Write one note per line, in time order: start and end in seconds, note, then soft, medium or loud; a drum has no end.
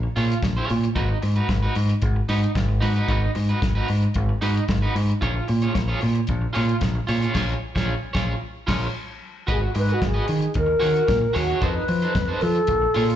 0.03 muted clean electric guitar stroke soft
0.16 0.33 A#2 loud
0.16 0.37 F4 medium
0.16 0.30 G#4 medium
0.16 0.29 C#5 medium
0.16 open hi-hat medium
0.30 muted clean electric guitar stroke soft
0.30 closed hi-hat medium
0.42 0.60 A#1 medium
0.42 muted clean electric guitar stroke soft
0.42 kick loud
0.42 snare loud
0.42 closed hi-hat medium
0.57 0.69 F4 medium
0.57 0.69 G#4 medium
0.57 0.70 C#5 medium
0.69 0.87 A#2 loud
0.69 muted clean electric guitar stroke soft
0.69 open hi-hat medium
0.84 muted clean electric guitar stroke soft
0.84 closed hi-hat soft
0.95 1.13 G#1 loud
0.95 1.17 D#4 medium
0.95 1.10 F#4 medium
0.95 1.09 B4 medium
0.95 kick loud
0.95 closed hi-hat medium
1.10 muted clean electric guitar stroke soft
1.22 1.40 G#2 medium
1.22 muted clean electric guitar stroke soft
1.22 open hi-hat medium
1.36 1.48 D#4 soft
1.36 1.48 F#4 medium
1.36 1.49 B4 medium
1.36 closed hi-hat soft
1.49 1.66 G#1 medium
1.49 muted clean electric guitar stroke soft
1.49 kick loud
1.49 snare loud
1.49 closed hi-hat medium
1.62 1.74 D#4 medium
1.62 1.75 F#4 medium
1.62 1.75 B4 medium
1.75 1.93 G#2 loud
1.75 muted clean electric guitar stroke soft
1.75 open hi-hat medium
1.89 muted clean electric guitar stroke medium
1.89 closed hi-hat soft
2.02 2.20 G#1 loud
2.02 kick loud
2.02 closed hi-hat medium
2.16 muted clean electric guitar stroke soft
2.29 2.46 G#2 loud
2.29 2.50 D#4 medium
2.29 2.42 F#4 medium
2.29 2.41 B4 medium
2.29 open hi-hat medium
2.42 muted clean electric guitar stroke soft
2.42 closed hi-hat medium
2.55 2.84 G#1 medium
2.55 muted clean electric guitar stroke soft
2.55 kick loud
2.55 snare loud
2.55 closed hi-hat medium
2.69 muted clean electric guitar stroke soft
2.81 2.99 G#2 loud
2.81 2.96 D#4 medium
2.81 2.95 F#4 medium
2.81 2.95 B4 medium
2.81 open hi-hat medium
2.96 3.07 D#4 medium
2.96 3.08 F#4 medium
2.96 3.09 B4 medium
2.96 closed hi-hat soft
3.08 3.26 G#1 loud
3.08 3.30 D#4 medium
3.08 3.22 F#4 medium
3.08 3.21 B4 medium
3.08 kick loud
3.08 closed hi-hat medium
3.22 muted clean electric guitar stroke soft
3.35 3.52 G#2 medium
3.35 muted clean electric guitar stroke soft
3.35 open hi-hat medium
3.49 3.60 D#4 soft
3.49 3.61 F#4 medium
3.49 3.61 B4 medium
3.49 closed hi-hat soft
3.61 3.79 G#1 medium
3.61 muted clean electric guitar stroke soft
3.61 kick loud
3.61 snare loud
3.61 closed hi-hat medium
3.75 3.88 D#4 medium
3.75 3.88 F#4 medium
3.75 3.89 B4 medium
3.88 4.06 G#2 medium
3.88 muted clean electric guitar stroke soft
3.88 open hi-hat medium
4.02 muted clean electric guitar stroke soft
4.02 closed hi-hat soft
4.14 4.32 G#1 loud
4.14 kick medium
4.14 closed hi-hat medium
4.29 muted clean electric guitar stroke soft
4.41 4.59 G#2 medium
4.41 4.63 D#4 loud
4.41 4.56 F#4 loud
4.41 4.55 B4 loud
4.41 open hi-hat medium
4.56 muted clean electric guitar stroke soft
4.56 closed hi-hat medium
4.68 4.86 G#1 medium
4.68 muted clean electric guitar stroke soft
4.68 kick loud
4.68 snare loud
4.68 closed hi-hat medium
4.82 4.94 D#4 medium
4.82 4.94 F#4 medium
4.82 4.95 B4 medium
4.95 5.12 G#2 loud
4.95 muted clean electric guitar stroke soft
4.95 open hi-hat medium
5.09 muted clean electric guitar stroke soft
5.09 closed hi-hat soft
5.21 5.39 A#1 loud
5.21 5.43 F4 medium
5.21 5.35 G#4 medium
5.21 5.34 C#5 medium
5.21 kick medium
5.21 closed hi-hat medium
5.35 muted clean electric guitar stroke soft
5.48 5.66 A#2 medium
5.48 muted clean electric guitar stroke soft
5.48 open hi-hat medium
5.62 5.72 F4 soft
5.62 5.73 G#4 soft
5.62 5.73 C#5 medium
5.62 closed hi-hat soft
5.73 5.92 A#1 medium
5.73 muted clean electric guitar stroke soft
5.73 kick loud
5.73 snare loud
5.73 closed hi-hat medium
5.88 6.00 F4 medium
5.88 6.00 G#4 medium
5.88 6.01 C#5 medium
6.01 6.19 A#2 medium
6.01 muted clean electric guitar stroke soft
6.01 open hi-hat medium
6.15 muted clean electric guitar stroke soft
6.15 closed hi-hat soft
6.27 6.46 A#1 loud
6.27 kick loud
6.27 closed hi-hat medium
6.42 muted clean electric guitar stroke soft
6.53 6.73 A#2 loud
6.53 6.76 F4 medium
6.53 6.68 G#4 medium
6.53 6.67 C#5 loud
6.53 open hi-hat medium
6.68 muted clean electric guitar stroke soft
6.68 closed hi-hat medium
6.81 6.99 A#1 medium
6.81 muted clean electric guitar stroke soft
6.81 kick loud
6.81 snare loud
6.81 closed hi-hat medium
6.95 muted clean electric guitar stroke soft
7.07 7.25 A#2 loud
7.07 7.22 F4 medium
7.07 7.21 G#4 medium
7.07 7.20 C#5 medium
7.07 open hi-hat medium
7.21 7.33 F4 medium
7.21 7.34 G#4 medium
7.21 7.34 C#5 medium
7.21 closed hi-hat soft
7.34 7.54 A#1 loud
7.34 7.53 F4 loud
7.34 7.53 G#4 medium
7.34 7.54 C#5 loud
7.34 kick medium
7.34 snare medium
7.34 crash medium
7.75 7.94 A#1 medium
7.75 7.94 F4 medium
7.75 7.94 G#4 medium
7.75 7.93 C#5 medium
7.75 kick loud
7.75 snare loud
8.13 8.34 A#1 medium
8.13 8.33 F4 medium
8.13 8.33 G#4 medium
8.13 8.32 C#5 medium
8.13 kick loud
8.13 snare medium
8.67 8.87 A#1 loud
8.67 8.86 F4 loud
8.67 8.86 G#4 loud
8.67 8.87 C#5 loud
8.67 kick loud
8.67 snare loud
8.67 crash medium
9.47 9.65 G#1 loud
9.47 9.69 F#4 medium
9.47 9.61 B4 medium
9.47 9.61 D#5 medium
9.47 kick loud
9.47 closed hi-hat medium
9.51 9.57 G#4 loud
9.62 muted clean electric guitar stroke soft
9.74 9.92 G#2 loud
9.74 9.94 B4 loud
9.74 muted clean electric guitar stroke soft
9.74 open hi-hat medium
9.89 9.99 F#4 soft
9.89 10.00 B4 medium
9.89 10.01 D#5 medium
9.89 closed hi-hat soft
9.93 10.03 F#4 medium
10.00 10.19 G#1 loud
10.00 muted clean electric guitar stroke soft
10.00 kick loud
10.00 snare loud
10.00 closed hi-hat medium
10.05 10.53 G#4 medium
10.14 10.25 F#4 medium
10.14 10.26 B4 medium
10.14 10.27 D#5 medium
10.27 10.46 D#3 medium
10.27 muted clean electric guitar stroke soft
10.27 open hi-hat medium
10.40 muted clean electric guitar stroke soft
10.40 closed hi-hat soft
10.54 10.73 D#2 loud
10.54 11.38 A#4 loud
10.54 kick loud
10.54 closed hi-hat medium
10.67 muted clean electric guitar stroke medium
10.79 10.99 D#3 loud
10.79 11.02 F#4 loud
10.79 10.93 G#4 loud
10.79 10.93 C#5 loud
10.79 open hi-hat medium
10.94 muted clean electric guitar stroke soft
10.94 closed hi-hat medium
11.07 11.25 A#2 medium
11.07 muted clean electric guitar stroke soft
11.07 kick loud
11.07 snare loud
11.07 closed hi-hat medium
11.21 muted clean electric guitar stroke soft
11.33 11.52 D#2 loud
11.33 11.48 F#4 loud
11.33 11.66 F#4 medium
11.33 11.48 G#4 medium
11.33 11.47 C#5 loud
11.33 open hi-hat medium
11.48 11.60 F#4 medium
11.48 11.61 G#4 medium
11.48 11.62 C#5 medium
11.48 closed hi-hat soft
11.61 11.79 F2 loud
11.61 11.83 D#4 medium
11.61 11.75 A4 medium
11.61 12.43 B4 loud
11.61 11.74 C5 medium
11.61 kick loud
11.61 closed hi-hat medium
11.75 muted clean electric guitar stroke soft
11.88 12.05 F3 medium
11.88 muted clean electric guitar stroke soft
11.88 open hi-hat medium
12.02 12.13 D#4 medium
12.02 12.14 A4 medium
12.02 12.14 C5 medium
12.02 closed hi-hat soft
12.14 12.32 F2 loud
12.14 muted clean electric guitar stroke soft
12.14 kick loud
12.14 snare loud
12.14 closed hi-hat medium
12.28 12.40 D#4 medium
12.28 12.41 A4 medium
12.28 12.41 C5 medium
12.41 12.59 F3 loud
12.41 13.16 A4 loud
12.41 muted clean electric guitar stroke soft
12.41 open hi-hat medium
12.55 muted clean electric guitar stroke medium
12.55 closed hi-hat soft
12.67 12.85 A#1 loud
12.67 kick loud
12.67 closed hi-hat medium
12.82 muted clean electric guitar stroke soft
12.94 13.13 A#2 medium
12.94 13.16 F4 medium
12.94 13.09 G#4 medium
12.94 13.08 C#5 loud
12.94 open hi-hat medium
13.09 muted clean electric guitar stroke soft
13.09 closed hi-hat medium